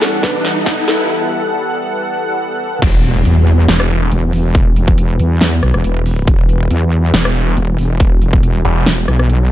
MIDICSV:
0, 0, Header, 1, 8, 480
1, 0, Start_track
1, 0, Key_signature, 1, "minor"
1, 0, Tempo, 431655
1, 1218, Time_signature, 4, 2, 24, 8
1, 10585, End_track
2, 0, Start_track
2, 0, Title_t, "Felt piano"
2, 0, Program_c, 0, 0
2, 18, Note_on_c, 0, 69, 87
2, 240, Note_off_c, 0, 69, 0
2, 258, Note_on_c, 0, 71, 92
2, 887, Note_off_c, 0, 71, 0
2, 978, Note_on_c, 0, 69, 91
2, 1199, Note_off_c, 0, 69, 0
2, 10585, End_track
3, 0, Start_track
3, 0, Title_t, "Analog synth pad"
3, 0, Program_c, 1, 89
3, 0, Note_on_c, 1, 52, 81
3, 0, Note_on_c, 1, 55, 75
3, 0, Note_on_c, 1, 59, 72
3, 0, Note_on_c, 1, 69, 90
3, 0, Note_on_c, 1, 78, 71
3, 3093, Note_off_c, 1, 52, 0
3, 3093, Note_off_c, 1, 55, 0
3, 3093, Note_off_c, 1, 59, 0
3, 3093, Note_off_c, 1, 78, 0
3, 3099, Note_off_c, 1, 69, 0
3, 3137, Note_on_c, 1, 52, 82
3, 3137, Note_on_c, 1, 55, 76
3, 3137, Note_on_c, 1, 59, 76
3, 3137, Note_on_c, 1, 66, 77
3, 3137, Note_on_c, 1, 71, 92
3, 10585, Note_off_c, 1, 52, 0
3, 10585, Note_off_c, 1, 55, 0
3, 10585, Note_off_c, 1, 59, 0
3, 10585, Note_off_c, 1, 66, 0
3, 10585, Note_off_c, 1, 71, 0
3, 10585, End_track
4, 0, Start_track
4, 0, Title_t, "Detuned saw bass"
4, 0, Program_c, 2, 39
4, 4097, Note_on_c, 2, 28, 100
4, 4559, Note_off_c, 2, 28, 0
4, 7937, Note_on_c, 2, 28, 102
4, 8399, Note_off_c, 2, 28, 0
4, 9618, Note_on_c, 2, 28, 95
4, 9839, Note_off_c, 2, 28, 0
4, 10585, End_track
5, 0, Start_track
5, 0, Title_t, "Wobble bass"
5, 0, Program_c, 3, 39
5, 3138, Note_on_c, 3, 28, 100
5, 3599, Note_off_c, 3, 28, 0
5, 3618, Note_on_c, 3, 40, 97
5, 4079, Note_off_c, 3, 40, 0
5, 4577, Note_on_c, 3, 28, 100
5, 4799, Note_off_c, 3, 28, 0
5, 4817, Note_on_c, 3, 28, 96
5, 5279, Note_off_c, 3, 28, 0
5, 5298, Note_on_c, 3, 28, 97
5, 5759, Note_off_c, 3, 28, 0
5, 5778, Note_on_c, 3, 40, 100
5, 6239, Note_off_c, 3, 40, 0
5, 6258, Note_on_c, 3, 35, 98
5, 6364, Note_off_c, 3, 35, 0
5, 6384, Note_on_c, 3, 28, 97
5, 6479, Note_off_c, 3, 28, 0
5, 6498, Note_on_c, 3, 28, 104
5, 6959, Note_off_c, 3, 28, 0
5, 6978, Note_on_c, 3, 28, 99
5, 7439, Note_off_c, 3, 28, 0
5, 7458, Note_on_c, 3, 40, 101
5, 7919, Note_off_c, 3, 40, 0
5, 8418, Note_on_c, 3, 28, 102
5, 8639, Note_off_c, 3, 28, 0
5, 8658, Note_on_c, 3, 28, 98
5, 9120, Note_off_c, 3, 28, 0
5, 9138, Note_on_c, 3, 28, 97
5, 9600, Note_off_c, 3, 28, 0
5, 9858, Note_on_c, 3, 28, 96
5, 10080, Note_off_c, 3, 28, 0
5, 10098, Note_on_c, 3, 35, 95
5, 10585, Note_off_c, 3, 35, 0
5, 10585, End_track
6, 0, Start_track
6, 0, Title_t, "Impact"
6, 0, Program_c, 4, 103
6, 3138, Note_on_c, 4, 60, 73
6, 5057, Note_off_c, 4, 60, 0
6, 10585, End_track
7, 0, Start_track
7, 0, Title_t, "Riser"
7, 0, Program_c, 5, 103
7, 0, Note_on_c, 5, 60, 75
7, 1218, Note_off_c, 5, 60, 0
7, 10585, End_track
8, 0, Start_track
8, 0, Title_t, "Drums"
8, 17, Note_on_c, 9, 38, 82
8, 17, Note_on_c, 9, 42, 52
8, 128, Note_off_c, 9, 38, 0
8, 128, Note_off_c, 9, 42, 0
8, 257, Note_on_c, 9, 38, 83
8, 257, Note_on_c, 9, 42, 78
8, 258, Note_on_c, 9, 36, 98
8, 368, Note_off_c, 9, 38, 0
8, 368, Note_off_c, 9, 42, 0
8, 369, Note_off_c, 9, 36, 0
8, 497, Note_on_c, 9, 38, 86
8, 497, Note_on_c, 9, 42, 55
8, 608, Note_off_c, 9, 38, 0
8, 608, Note_off_c, 9, 42, 0
8, 737, Note_on_c, 9, 38, 87
8, 737, Note_on_c, 9, 42, 80
8, 738, Note_on_c, 9, 36, 97
8, 848, Note_off_c, 9, 38, 0
8, 848, Note_off_c, 9, 42, 0
8, 849, Note_off_c, 9, 36, 0
8, 977, Note_on_c, 9, 38, 88
8, 977, Note_on_c, 9, 42, 53
8, 1088, Note_off_c, 9, 38, 0
8, 1088, Note_off_c, 9, 42, 0
8, 3137, Note_on_c, 9, 42, 83
8, 3137, Note_on_c, 9, 49, 105
8, 3138, Note_on_c, 9, 36, 120
8, 3248, Note_off_c, 9, 42, 0
8, 3248, Note_off_c, 9, 49, 0
8, 3249, Note_off_c, 9, 36, 0
8, 3377, Note_on_c, 9, 42, 55
8, 3488, Note_off_c, 9, 42, 0
8, 3617, Note_on_c, 9, 42, 85
8, 3728, Note_off_c, 9, 42, 0
8, 3857, Note_on_c, 9, 42, 55
8, 3969, Note_off_c, 9, 42, 0
8, 4097, Note_on_c, 9, 38, 119
8, 4097, Note_on_c, 9, 42, 80
8, 4208, Note_off_c, 9, 38, 0
8, 4208, Note_off_c, 9, 42, 0
8, 4223, Note_on_c, 9, 37, 77
8, 4335, Note_off_c, 9, 37, 0
8, 4337, Note_on_c, 9, 42, 55
8, 4449, Note_off_c, 9, 42, 0
8, 4577, Note_on_c, 9, 42, 84
8, 4688, Note_off_c, 9, 42, 0
8, 4817, Note_on_c, 9, 46, 98
8, 4929, Note_off_c, 9, 46, 0
8, 5057, Note_on_c, 9, 42, 85
8, 5058, Note_on_c, 9, 36, 122
8, 5169, Note_off_c, 9, 36, 0
8, 5169, Note_off_c, 9, 42, 0
8, 5297, Note_on_c, 9, 42, 57
8, 5409, Note_off_c, 9, 42, 0
8, 5424, Note_on_c, 9, 36, 111
8, 5535, Note_off_c, 9, 36, 0
8, 5537, Note_on_c, 9, 42, 84
8, 5649, Note_off_c, 9, 42, 0
8, 5777, Note_on_c, 9, 42, 57
8, 5889, Note_off_c, 9, 42, 0
8, 6017, Note_on_c, 9, 38, 125
8, 6017, Note_on_c, 9, 42, 84
8, 6129, Note_off_c, 9, 38, 0
8, 6129, Note_off_c, 9, 42, 0
8, 6257, Note_on_c, 9, 37, 52
8, 6257, Note_on_c, 9, 42, 55
8, 6368, Note_off_c, 9, 37, 0
8, 6368, Note_off_c, 9, 42, 0
8, 6384, Note_on_c, 9, 37, 50
8, 6495, Note_off_c, 9, 37, 0
8, 6498, Note_on_c, 9, 42, 84
8, 6609, Note_off_c, 9, 42, 0
8, 6737, Note_on_c, 9, 46, 94
8, 6849, Note_off_c, 9, 46, 0
8, 6977, Note_on_c, 9, 42, 82
8, 6978, Note_on_c, 9, 36, 126
8, 7089, Note_off_c, 9, 36, 0
8, 7089, Note_off_c, 9, 42, 0
8, 7218, Note_on_c, 9, 42, 55
8, 7329, Note_off_c, 9, 42, 0
8, 7458, Note_on_c, 9, 42, 84
8, 7569, Note_off_c, 9, 42, 0
8, 7698, Note_on_c, 9, 42, 55
8, 7809, Note_off_c, 9, 42, 0
8, 7937, Note_on_c, 9, 38, 123
8, 7937, Note_on_c, 9, 42, 82
8, 8048, Note_off_c, 9, 38, 0
8, 8048, Note_off_c, 9, 42, 0
8, 8064, Note_on_c, 9, 37, 80
8, 8175, Note_off_c, 9, 37, 0
8, 8177, Note_on_c, 9, 42, 55
8, 8289, Note_off_c, 9, 42, 0
8, 8417, Note_on_c, 9, 42, 83
8, 8528, Note_off_c, 9, 42, 0
8, 8657, Note_on_c, 9, 46, 93
8, 8768, Note_off_c, 9, 46, 0
8, 8897, Note_on_c, 9, 42, 79
8, 8898, Note_on_c, 9, 36, 125
8, 9009, Note_off_c, 9, 36, 0
8, 9009, Note_off_c, 9, 42, 0
8, 9137, Note_on_c, 9, 42, 51
8, 9249, Note_off_c, 9, 42, 0
8, 9264, Note_on_c, 9, 36, 110
8, 9375, Note_off_c, 9, 36, 0
8, 9377, Note_on_c, 9, 42, 81
8, 9488, Note_off_c, 9, 42, 0
8, 9618, Note_on_c, 9, 42, 55
8, 9729, Note_off_c, 9, 42, 0
8, 9857, Note_on_c, 9, 38, 122
8, 9857, Note_on_c, 9, 42, 76
8, 9969, Note_off_c, 9, 38, 0
8, 9969, Note_off_c, 9, 42, 0
8, 10098, Note_on_c, 9, 37, 55
8, 10098, Note_on_c, 9, 42, 53
8, 10209, Note_off_c, 9, 37, 0
8, 10209, Note_off_c, 9, 42, 0
8, 10224, Note_on_c, 9, 37, 52
8, 10335, Note_off_c, 9, 37, 0
8, 10338, Note_on_c, 9, 42, 79
8, 10449, Note_off_c, 9, 42, 0
8, 10585, End_track
0, 0, End_of_file